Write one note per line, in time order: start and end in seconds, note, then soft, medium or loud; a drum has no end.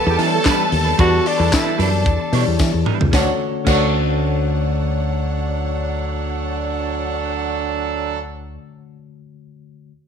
0.00 0.19 E3 medium
0.00 0.19 B3 medium
0.00 0.20 G4 medium
0.00 2.82 A4 medium
0.00 3.15 E5 medium
0.00 2.82 A5 loud
0.04 0.16 E2 loud
0.04 0.14 G3 medium
0.04 0.14 G4 medium
0.04 muted clean electric guitar stroke soft
0.18 0.38 E3 loud
0.18 0.84 E3 medium
0.18 0.39 G3 medium
0.18 0.84 B3 medium
0.18 0.32 D4 medium
0.18 0.32 E4 medium
0.18 0.85 G4 medium
0.18 0.31 B4 medium
0.18 0.26 C#5 medium
0.18 open hi-hat medium
0.27 0.88 D5 medium
0.32 0.44 A3 loud
0.32 0.43 A4 loud
0.32 muted clean electric guitar stroke soft
0.44 0.65 G3 loud
0.44 0.67 B3 medium
0.44 0.58 D4 medium
0.44 0.58 E4 medium
0.44 0.57 B4 loud
0.44 0.67 B4 loud
0.44 kick loud
0.44 snare loud
0.44 clap medium
0.44 closed hi-hat medium
0.44 tambourine medium
0.58 muted clean electric guitar stroke soft
0.70 0.92 D#2 medium
0.70 muted clean electric guitar stroke soft
0.70 open hi-hat medium
0.85 0.96 G3 soft
0.85 0.97 D4 medium
0.85 0.98 E4 medium
0.85 0.98 B4 medium
0.97 1.19 E2 loud
0.97 1.86 E3 medium
0.97 1.18 G3 medium
0.97 1.86 B3 medium
0.97 1.12 D4 medium
0.97 1.11 E4 medium
0.97 1.29 F#4 loud
0.97 1.86 G4 medium
0.97 1.11 B4 medium
0.97 1.87 D5 medium
0.97 kick loud
0.97 closed hi-hat medium
1.12 muted clean electric guitar stroke medium
1.24 1.55 D4 loud
1.24 muted clean electric guitar stroke soft
1.24 open hi-hat medium
1.38 1.49 E2 loud
1.38 1.50 G3 medium
1.38 1.50 D4 medium
1.38 1.50 E4 medium
1.38 1.51 B4 medium
1.51 1.80 E4 loud
1.51 muted clean electric guitar stroke soft
1.51 kick loud
1.51 snare loud
1.51 clap loud
1.51 closed hi-hat medium
1.51 tambourine loud
1.64 1.76 G3 medium
1.64 1.77 D4 medium
1.64 1.77 E4 medium
1.64 1.78 B4 medium
1.78 2.06 F#2 loud
1.78 1.99 G3 medium
1.78 1.92 D4 medium
1.78 1.91 E4 medium
1.78 1.90 B4 medium
1.78 open hi-hat medium
1.82 2.57 D4 medium
1.91 muted clean electric guitar stroke medium
2.06 2.16 E2 loud
2.06 kick loud
2.06 closed hi-hat medium
2.20 muted clean electric guitar stroke medium
2.32 2.43 B2 medium
2.32 2.98 E3 medium
2.32 2.53 G3 medium
2.32 2.99 B3 medium
2.32 2.47 D4 medium
2.32 2.47 E4 loud
2.32 2.99 G4 medium
2.32 2.40 C#5 medium
2.32 2.46 C#5 loud
2.32 open hi-hat medium
2.41 3.02 D5 medium
2.47 2.56 E2 medium
2.47 muted clean electric guitar stroke soft
2.59 2.70 E3 loud
2.59 kick loud
2.59 snare medium
2.59 tambourine medium
2.74 2.83 E2 medium
2.74 muted clean electric guitar stroke soft
2.85 3.06 G3 medium
2.85 3.00 D4 medium
2.85 3.00 E4 medium
2.85 2.99 B4 medium
2.85 mid tom medium
3.00 3.10 C#2 medium
3.00 muted clean electric guitar stroke soft
3.00 floor tom medium
3.10 3.29 D2 medium
3.10 3.27 D3 medium
3.10 3.29 F#3 medium
3.10 3.28 A3 medium
3.10 3.64 C#4 medium
3.10 3.29 D4 medium
3.10 3.66 F#4 medium
3.10 3.29 A4 medium
3.10 3.29 C#5 medium
3.10 kick loud
3.10 snare medium
3.10 tambourine medium
3.14 3.29 D4 medium
3.14 3.29 F#4 medium
3.14 3.68 A4 medium
3.14 3.30 C#5 loud
3.14 3.69 C#5 medium
3.14 3.29 F#5 medium
3.64 8.56 D2 loud
3.64 8.53 D3 medium
3.64 8.17 F#3 medium
3.64 8.55 A3 medium
3.64 8.58 C#4 medium
3.64 8.17 D4 medium
3.64 8.60 F#4 medium
3.64 8.17 A4 loud
3.64 8.17 C#5 medium
3.64 8.17 F#5 loud
3.64 kick loud
3.64 crash medium
3.64 tambourine medium
3.68 8.58 F#4 medium
3.68 8.62 A4 medium
3.68 8.63 C#5 medium
3.68 8.60 C#5 medium